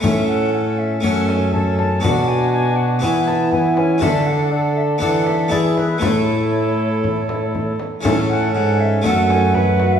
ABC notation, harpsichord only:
X:1
M:4/4
L:1/8
Q:1/4=120
K:A
V:1 name="Harpsichord"
[A,Cc]4 [A,Cc]4 | [B,DB]4 [B,EB]4 | [DFA]4 [B,DA]2 [B,EG]2 | [A,EA]8 |
[E,CA]4 [A,CA]4 |]
V:2 name="Harpsichord" clef=bass
A,,4 F,,4 | B,,4 E,4 | D,4 E,4 | A,,6- A,, z |
A,,2 G,,2 F,,4 |]